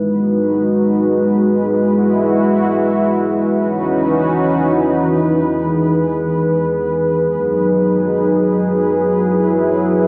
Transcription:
0.00 3.56 G#3 medium
0.00 1.75 D#4 medium
0.00 1.75 F#4 medium
0.00 3.56 B4 loud
1.77 3.58 E4 medium
1.77 3.58 F#4 medium
3.60 7.23 E3 medium
3.60 5.41 C#4 medium
3.60 7.23 D#4 medium
3.60 5.41 F#4 medium
3.60 10.07 B4 medium
5.43 10.07 G#4 medium
7.26 10.07 F#3 medium
7.26 9.08 D#4 medium
9.09 10.07 E4 medium

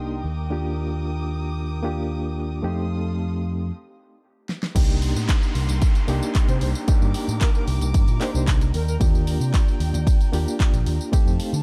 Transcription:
0.00 0.22 C2 medium
0.00 0.23 A#3 medium
0.00 0.23 D4 medium
0.00 0.23 D#4 medium
0.00 0.23 G4 medium
0.00 2.59 A#4 medium
0.00 2.59 G5 medium
0.00 0.20 C6 medium
0.00 0.20 D#6 medium
0.24 2.61 D#2 medium
0.24 2.61 D6 medium
0.24 2.61 D#6 medium
0.50 1.80 A#3 medium
0.50 1.80 D4 medium
0.50 1.81 F4 medium
0.50 1.81 G4 medium
1.83 2.60 A#3 medium
1.83 2.60 D4 medium
1.83 2.60 F4 medium
1.83 2.61 G4 medium
2.62 3.70 F2 medium
2.62 3.69 A3 medium
2.62 3.69 C4 medium
2.62 3.70 D#4 medium
2.62 3.70 G4 medium
2.62 3.69 A4 medium
2.62 3.69 F5 medium
2.62 3.69 C6 medium
2.62 3.69 D#6 medium
4.49 snare medium
4.63 snare medium
4.75 5.11 C2 loud
4.75 6.05 A#3 medium
4.75 6.05 D4 medium
4.75 6.05 D#4 medium
4.75 8.70 G4 medium
4.75 6.06 G4 loud
4.75 11.09 A#5 medium
4.75 6.86 C6 medium
4.75 kick loud
4.75 closed hi-hat medium
4.75 crash loud
4.75 ride medium
4.75 tambourine medium
4.75 downlifter medium
4.90 tambourine soft
5.02 open hi-hat loud
5.15 5.26 A2 medium
5.15 tambourine medium
5.29 kick loud
5.29 clap loud
5.29 closed hi-hat medium
5.29 ride medium
5.29 tambourine medium
5.43 tambourine soft
5.55 5.66 C2 medium
5.55 open hi-hat loud
5.69 5.79 C2 loud
5.69 closed hi-hat medium
5.69 tambourine medium
5.82 kick loud
5.82 closed hi-hat medium
5.82 ride medium
5.82 tambourine medium
5.95 closed hi-hat soft
5.95 tambourine soft
6.07 6.19 C2 medium
6.07 6.84 A#3 medium
6.07 6.85 D4 medium
6.07 6.85 D#4 medium
6.07 6.85 G4 loud
6.07 open hi-hat loud
6.23 tambourine medium
6.35 kick loud
6.35 clap loud
6.35 closed hi-hat medium
6.35 ride medium
6.35 tambourine medium
6.49 6.59 C3 medium
6.49 6.57 C5 medium
6.49 closed hi-hat medium
6.49 tambourine soft
6.61 6.72 C2 medium
6.61 6.70 C5 medium
6.61 open hi-hat loud
6.75 tambourine medium
6.87 8.17 A#3 medium
6.87 8.18 D4 medium
6.87 8.18 D#4 medium
6.87 8.18 G4 medium
6.87 8.72 D6 medium
6.87 muted picked electric bass stroke soft
6.87 kick loud
6.87 closed hi-hat medium
6.87 ride medium
6.87 tambourine medium
7.02 7.12 G2 medium
7.02 tambourine soft
7.14 open hi-hat loud
7.28 7.39 A2 medium
7.28 tambourine medium
7.41 7.50 A#4 medium
7.41 kick loud
7.41 clap loud
7.41 closed hi-hat medium
7.41 ride medium
7.41 tambourine medium
7.55 7.63 A#4 medium
7.55 tambourine soft
7.68 7.79 C2 medium
7.68 open hi-hat loud
7.81 7.92 C2 loud
7.81 closed hi-hat medium
7.81 tambourine medium
7.94 8.05 G2 medium
7.94 kick loud
7.94 closed hi-hat medium
7.94 ride medium
7.94 tambourine medium
8.08 8.18 A#2 medium
8.08 closed hi-hat soft
8.08 tambourine soft
8.20 8.72 A#3 loud
8.20 8.72 D4 medium
8.20 8.72 D#4 medium
8.20 8.73 G4 loud
8.20 8.30 C5 medium
8.20 clap medium
8.20 open hi-hat loud
8.35 8.70 C2 loud
8.35 8.43 C5 medium
8.35 tambourine medium
8.47 kick loud
8.47 clap loud
8.47 closed hi-hat medium
8.47 ride medium
8.47 tambourine medium
8.61 closed hi-hat medium
8.61 tambourine soft
8.74 8.95 D#2 medium
8.74 8.83 A#4 medium
8.74 11.11 D5 medium
8.74 11.11 G5 medium
8.74 open hi-hat loud
8.88 8.96 A#4 medium
8.88 tambourine medium
9.00 9.36 D#2 loud
9.00 10.30 A#3 medium
9.00 10.30 D4 medium
9.00 10.30 F4 medium
9.00 10.31 G4 loud
9.00 kick loud
9.00 closed hi-hat medium
9.00 ride medium
9.00 tambourine medium
9.15 tambourine soft
9.27 open hi-hat loud
9.40 9.51 C3 medium
9.40 tambourine medium
9.54 kick loud
9.54 clap loud
9.54 closed hi-hat medium
9.54 ride medium
9.54 tambourine medium
9.68 tambourine soft
9.80 9.91 D#2 medium
9.80 open hi-hat loud
9.94 10.04 D#2 loud
9.94 closed hi-hat medium
9.94 tambourine medium
10.07 kick loud
10.07 closed hi-hat medium
10.07 ride medium
10.07 tambourine medium
10.21 closed hi-hat soft
10.21 tambourine soft
10.32 10.44 D#2 loud
10.32 11.09 A#3 medium
10.32 11.10 D4 medium
10.32 11.10 F4 medium
10.32 11.10 G4 loud
10.32 open hi-hat loud
10.48 tambourine medium
10.60 kick loud
10.60 clap loud
10.60 closed hi-hat medium
10.60 ride medium
10.60 tambourine medium
10.73 10.84 A#1 medium
10.73 closed hi-hat medium
10.73 tambourine soft
10.86 10.97 D#2 medium
10.86 open hi-hat loud
11.01 tambourine medium
11.12 11.63 A3 medium
11.12 11.63 C4 medium
11.12 11.63 D#4 medium
11.12 11.63 G4 loud
11.12 11.63 C5 medium
11.12 11.63 F5 medium
11.12 11.63 A5 medium
11.12 muted picked electric bass stroke soft
11.12 kick loud
11.12 closed hi-hat medium
11.12 ride medium
11.12 tambourine medium
11.26 11.37 F2 medium
11.26 tambourine soft
11.40 open hi-hat loud
11.53 11.63 D3 medium
11.53 tambourine medium

